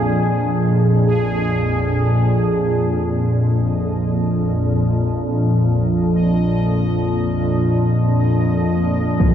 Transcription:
Already playing: A#1 F2 A#3 F4 G#4 D#5
3.10 A#1 F2 D#5
9.20 impact

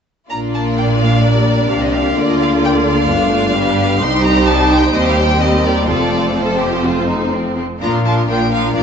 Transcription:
0.30 A#1 A#2 A#3 D4 F4 D5 A#5
0.55 A5
0.78 G5
1.02 F5
1.25 G3 A#4 D5
1.49 D5
1.71 C2 C3 F3 G4 F5
1.84 D#5
1.95 F5
2.17 D2 D3 A#3 F4 D5
2.30 D#5
2.42 F5
2.63 D4 G5
2.87 F5
3.09 G1 G2 A3 B3 D4 F4
3.55 G3 D4 G4 B4
4.01 C2 G3 D#4 G4 C5 C6
4.24 A#5
4.47 A5
4.71 G5
4.94 D#2 G3 C4 G4 C5 D#5
5.07 F5
5.18 G5
5.40 G3 C4 G4 C5 D#5
5.64 A#4 D5
5.88 F1 F2 F3 A3 C4 F4 A4 D5
6.37 F3 C4 A4 C5
6.61 G4
6.85 F4
7.08 D#4
7.32 C4
7.57 C4
7.80 A#1 A#2 F3 A#3 D4 F4 A#4 A#5
8.05 F3 D4 F4 A#4 A5
8.28 A#1 A#2 F3 D4 F4 A#4 G5
8.51 F3 D4 F4 A#4 F5
8.75 A#1 A#2 F3 D4 F4 A#4 D5

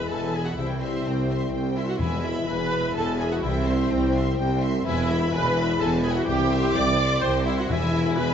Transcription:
Already playing: E3 G#3 B3 E4 G#4 B4 E5 B5
0.09 E1 E2 A4 B4 G#5 A5
0.21 E5
0.33 G#4 B4 E5 G#5 B5
0.45 E4 F#4 F#5
0.57 C2 C3 G3 E4 C5 E5 G5
0.69 G3
0.80 C4 C5 E5 C6
0.92 E4
1.04 C2 G4 C5 G5
1.16 C5
1.28 E5 C6
1.40 G5
1.52 C2 C5 E5 G5
1.64 C5
1.75 E4 G4 E5 C6
1.87 C4 F#4 F#5
1.99 E1 E2 E3 G#3 E4 B4 E5 G#5
2.11 B3
2.23 E4 E5 B5
2.35 G#4
2.47 E1 E2 G#3 E4 B4 G#5 B5
2.60 E5
2.71 E5 G#5 B5
2.95 E1 E2 A4 B4 G#5 A5
3.08 E5
3.18 G#4 B4 E5 G#5 B5
3.31 E4 F#4 F#5
3.42 C2 C3 G3 E4 C5 E5 G5
3.55 G3
3.66 C4 C5 E5 C6
3.78 E4
3.89 C2 G4 C5 G5
4.03 C5
4.14 E5 C6
4.27 G5
4.37 C2 C5 E5 G5
4.50 C5
4.62 G4 E5 C6
4.74 C4
4.85 E1 E2 E3 G#3 E4 B4 E5 G#5
4.98 B3
5.08 E4 E5 B5
5.21 G#4
5.32 E1 E2 B4 G#5 B5
5.44 E5
5.55 E5 G#5 B5
5.68 B5
5.77 E1 E2 A4 B4 G#5 A5
5.92 E5
6.01 G#4 B4 E5 G#5 B5
6.15 E4 F#4 F#5
6.26 C2 C3 G3 G4 C5 G5
6.40 G3
6.51 C4 E5 C6
6.63 E4
6.74 C2 G4 C5 D5 G5 D6
6.88 C5
6.99 E5 C6
7.11 G5
7.21 C2 C5 E5 G5 C6
7.34 C5
7.45 E4 G4 E5 C6
7.58 C4 F#4 F#5
7.67 E1 E2 E3 G#3 E4 E5 G#5
7.82 B3
7.95 E4
8.06 G#4
8.16 B4 E5 G#5 B5
8.31 E5

